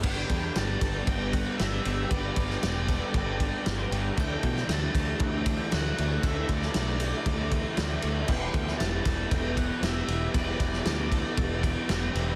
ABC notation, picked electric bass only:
X:1
M:4/4
L:1/8
Q:1/4=116
K:G
V:1 name="Picked electric bass" clef=bass
G,,, E,, G,,, G,,, G,,,2 G,,, G,,, | G,,, G,,, E,,,2 G,,,2 G,,, G,,, | D,, B,, D,, D,, D,,2 D,, D,, | D,, D,, B,,,2 D,,2 D,, D,, |
E,,, D,, E,,, E,,, E,,,2 E,,, E,,, | E,,, E,,, D,,2 E,,,2 E,,, E,,, |]